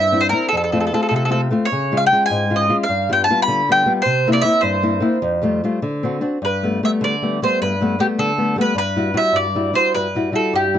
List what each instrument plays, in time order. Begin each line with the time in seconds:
Already playing: nylon-string guitar G2, mandolin E5
0.12 nylon-string guitar C4 D4 E4
0.21 mandolin C5
0.29 nylon-string guitar C4 D4 E4, mandolin A#4
0.49 mandolin A4
0.53 nylon-string guitar F2
0.57 mandolin A4
0.64 mandolin A4
0.72 nylon-string guitar A3 C4 F4, mandolin A4
0.80 mandolin A4
0.87 mandolin A4
0.93 nylon-string guitar A3 C4 F4, mandolin A4
1.03 mandolin A4
1.09 nylon-string guitar C3, mandolin A4
1.16 mandolin A4
1.25 mandolin A4
1.30 nylon-string guitar A3 C4 F4, mandolin A4
1.51 nylon-string guitar A3 C4 F4
1.65 mandolin C#5
1.72 nylon-string guitar C#3
1.92 nylon-string guitar G#3 C#4 F4
1.97 mandolin F5
2.06 mandolin G5
2.12 nylon-string guitar G#3 C#4 F4
2.26 mandolin G#5
2.30 nylon-string guitar G#2
2.50 nylon-string guitar G#3 C#4 F4
2.56 mandolin D#5
2.69 nylon-string guitar G#3 C#4 F4
2.83 mandolin F5
2.89 nylon-string guitar G2
3.09 nylon-string guitar G3 B3 F4, mandolin G5
3.24 mandolin A5
3.30 nylon-string guitar G3 B3 F4
3.42 mandolin B5
3.48 nylon-string guitar D3
3.69 nylon-string guitar G3 B3 F4, mandolin G5
3.86 nylon-string guitar G3 B3 F4
4.02 nylon-string guitar C3, mandolin C5
4.27 nylon-string guitar A#3 C4 E4
4.32 mandolin D5 E5
4.42 nylon-string guitar A#3 C4 E4, mandolin E5
4.61 nylon-string guitar G2, mandolin C5
4.83 nylon-string guitar A#3 C4 E4
5.00 nylon-string guitar A#3 C4 E4
5.22 nylon-string guitar F2
5.42 nylon-string guitar G3 A3 F4
5.64 nylon-string guitar G3 A3 F4
5.82 nylon-string guitar D3
6.03 nylon-string guitar C4 D4 F#4
6.21 nylon-string guitar C4 D4 F#4
6.42 nylon-string guitar G2, mandolin B4
6.63 nylon-string guitar G3 A3 B3
6.83 nylon-string guitar G3 A3 B3, mandolin E5
7.01 nylon-string guitar D3, mandolin D5
7.22 nylon-string guitar G3 A3 B3
7.42 nylon-string guitar G3 A3 B3, mandolin C5
7.62 nylon-string guitar G2, mandolin B4
7.81 nylon-string guitar G3 A3 B3
7.99 nylon-string guitar G3 A3 B3, mandolin G4
8.18 nylon-string guitar D3, mandolin A4
8.38 nylon-string guitar G3 A3 B3
8.56 nylon-string guitar G3 A3 B3
8.61 mandolin B4
8.75 nylon-string guitar G2, mandolin B4
8.96 nylon-string guitar G3 E4 F#4
9.14 nylon-string guitar G3 E4 F#4, mandolin E5
9.33 nylon-string guitar G2, mandolin D5
9.55 nylon-string guitar G3 E4 F#4
9.73 nylon-string guitar G3 E4 F#4, mandolin C5
9.95 nylon-string guitar G2, mandolin B4
10.15 nylon-string guitar G3 E4 F#4
10.32 nylon-string guitar G3 E4 F#4, mandolin A4
10.53 nylon-string guitar G2, mandolin G4
10.74 nylon-string guitar G3 E4 F#4